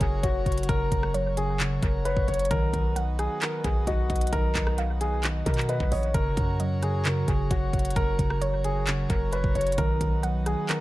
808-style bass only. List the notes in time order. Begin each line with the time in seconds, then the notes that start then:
0.01 F#1
0.23 F#1
0.46 F#1
0.69 F#1
0.92 F#1
1.83 F#1
2.17 F#1
2.28 F#1
2.51 B1
2.73 B1
3.64 B1
3.87 B1
4.10 B1
4.33 B1
4.55 B1
5.46 B2
5.80 B1
5.92 A#1
6.14 F#1
6.37 F#2
7.28 F#1
7.51 F#1
7.73 F#1
7.96 F#1
8.19 F#1
9.10 F#1
9.44 F#1
9.55 F#1
9.78 B1
10.01 B1